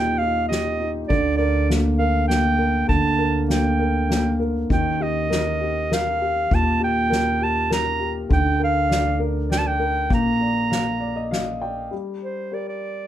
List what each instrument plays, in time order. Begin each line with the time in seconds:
Already playing: upright bass D#2, grand piano A#2 D#4 G4, clarinet G5
0.18 grand piano D#4, clarinet F5
0.48 grand piano G4, clarinet D#5, snare, ride
0.80 grand piano D#4
1.08 upright bass D2, grand piano D3, clarinet D5, kick
1.37 grand piano A#4, clarinet D5
1.69 grand piano A#3, snare, ride
1.98 grand piano A#4, clarinet F5
2.28 grand piano A#3, clarinet G5, snare, ride
2.59 grand piano A#4
2.88 upright bass D2, grand piano D3, clarinet A5, kick, ride
3.19 grand piano A#4
3.48 grand piano A#3, clarinet G5, snare, ride
3.79 grand piano A#4
4.09 grand piano A#3, snare, ride
4.39 grand piano A#4
4.70 upright bass D#2, grand piano D#3, clarinet G5, kick, ride
5.00 grand piano G4, clarinet D#5
5.30 grand piano A#4, snare, ride
5.61 grand piano G4
5.91 grand piano A#4, clarinet F5, snare, ride
6.21 grand piano G4
6.51 upright bass D#2, grand piano A#2, clarinet A5, kick, ride
6.80 grand piano G4, clarinet G5
7.10 grand piano A#4, snare, ride
7.41 grand piano G4, clarinet A5
7.70 grand piano A#4, clarinet A#5, snare, ride
8.00 grand piano G4
8.29 upright bass D2, grand piano D3, clarinet G5, kick, ride
8.60 grand piano A#4
8.64 clarinet F5
8.89 grand piano D5, snare, ride
9.20 grand piano A#4
9.50 grand piano D5, clarinet G5, snare, ride
9.58 clarinet A5
9.67 clarinet G5
9.80 grand piano A#4
10.10 upright bass A#1, grand piano A#3, clarinet A#5, kick, ride
10.41 grand piano D5
10.71 grand piano F5, snare, ride
11.00 grand piano D5
11.16 grand piano D#5
11.31 grand piano F5, snare, ride
11.61 grand piano D5 G5
11.91 grand piano G3
12.24 clarinet C5
12.52 grand piano G4 A#4, clarinet D5
12.68 clarinet D5